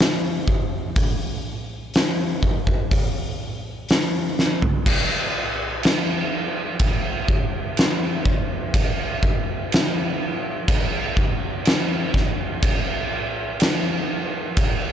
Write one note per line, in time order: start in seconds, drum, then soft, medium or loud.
0.01 snare loud
0.48 kick medium
0.96 kick loud
0.96 open hi-hat medium
1.94 snare loud
1.94 open hi-hat medium
2.43 kick medium
2.67 kick medium
2.91 kick loud
2.91 open hi-hat medium
3.89 snare loud
3.89 open hi-hat medium
4.39 snare medium
4.62 floor tom medium
4.86 kick loud
4.86 crash loud
4.86 crash medium
5.83 snare loud
5.83 crash medium
6.79 kick loud
6.79 crash medium
7.28 kick loud
7.77 snare loud
7.77 crash medium
8.26 kick medium
8.74 kick loud
8.74 crash medium
9.23 kick medium
9.72 snare loud
9.72 crash medium
10.68 kick loud
10.68 crash medium
11.17 kick loud
11.65 snare loud
11.65 crash medium
12.14 kick medium
12.14 snare soft
12.62 kick loud
12.62 crash medium
13.60 snare loud
13.60 crash medium
14.57 kick loud
14.57 crash medium